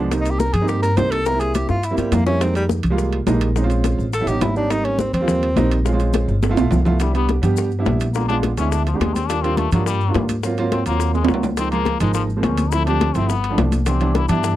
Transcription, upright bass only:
0.00 0.49 C2 medium
0.53 0.94 G2 loud
0.97 1.64 C2 medium
1.69 1.96 G2 medium
1.97 2.11 G2 medium
2.12 2.79 F2 medium
2.83 3.24 C2 medium
3.27 3.93 A#1 medium
3.98 4.25 A1 medium
4.26 4.40 A1 medium
4.41 5.08 G#1 medium
5.13 5.53 D#2 medium
5.56 6.23 A#1 medium
6.28 6.55 G1 loud
6.57 6.71 B1 medium
6.71 7.38 C2 medium
7.42 7.83 G2 medium
7.86 8.52 A#1 medium
8.57 8.98 D2 medium
9.00 9.67 D#2 medium
9.72 10.12 G2 medium
10.15 10.81 G#2 medium
10.86 11.26 D#2 medium
11.28 11.95 C#2 medium
12.00 12.41 G#1 loud
12.43 13.09 D2 medium
13.14 13.55 G1 medium
13.58 14.24 C2 medium
14.29 14.56 G2 medium

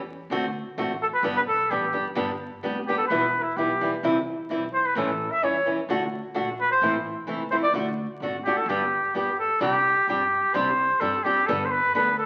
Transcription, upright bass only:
0.00 0.14 E2 medium
0.30 0.60 D2 medium
0.77 1.07 A1 medium
1.23 1.38 G1 medium
1.47 1.67 B1 medium
1.70 1.91 A1 medium
1.94 2.14 G1 medium
2.17 2.47 G1 medium
2.64 2.94 F1 medium
3.10 3.40 E1 medium
3.56 3.86 B1 medium
4.03 4.33 C2 medium
4.49 4.79 B1 medium
4.95 5.25 A1 loud
5.42 5.72 E2 medium
5.88 6.19 D2 medium
6.35 6.65 A#1 medium
6.81 7.11 A1 medium
7.27 7.57 C2 medium
7.73 8.04 D2 loud
8.20 8.51 G#1 medium
8.66 8.97 G1 medium
9.14 9.44 G2 medium
9.60 9.91 C2 medium
10.07 10.38 G2 medium
10.54 10.84 C2 loud
11.01 11.31 G2 medium
11.49 11.79 G1 loud
11.95 12.25 D2 medium

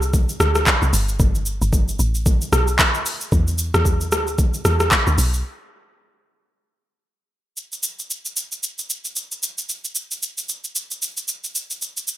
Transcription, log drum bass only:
0.00 0.27 C2 loud
0.40 0.65 D2 medium
0.82 0.93 C2 medium
0.93 1.18 G1 loud
1.20 1.59 G1 loud
1.62 1.97 G1 loud
1.99 2.39 A1 medium
2.52 2.78 B1 medium
3.32 3.72 E2 loud
3.74 4.13 E2 loud
4.12 4.51 D2 loud
4.65 4.90 E2 medium
5.07 5.17 D2 medium
5.18 5.43 B1 medium

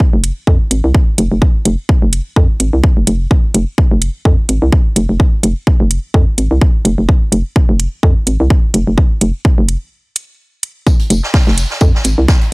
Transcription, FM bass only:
0.13 0.32 F1 loud
0.47 0.58 F2 loud
0.71 0.82 G#1 medium
0.84 0.93 C2 medium
1.18 1.29 F1 loud
1.32 1.40 F1 medium
1.66 1.76 F1 loud
2.02 2.21 F1 loud
2.36 2.47 F2 loud
2.60 2.71 G#1 medium
2.73 2.82 C2 medium
2.97 3.05 F1 medium
3.07 3.27 F1 loud
3.54 3.65 F1 loud
3.91 4.10 F1 loud
4.25 4.36 F2 loud
4.49 4.60 G#1 medium
4.62 4.70 C2 loud
4.96 5.07 F1 loud
5.09 5.18 F1 medium
5.43 5.54 F1 loud
5.80 5.99 F1 loud
6.14 6.25 F2 loud
6.38 6.49 G#1 medium
6.51 6.59 C2 medium
6.85 6.96 F1 loud
6.98 7.07 F1 medium
7.32 7.43 F1 medium
7.69 7.88 F1 loud
8.03 8.14 F2 loud
8.27 8.38 G#1 medium
8.40 8.48 C2 medium
8.74 8.85 F1 loud
8.87 8.96 F1 medium
9.21 9.32 F1 medium
9.58 9.77 F1 loud
11.10 11.21 F1 loud
11.47 11.66 F1 loud
11.81 11.92 F2 loud
12.05 12.15 G#1 medium
12.18 12.26 C2 medium

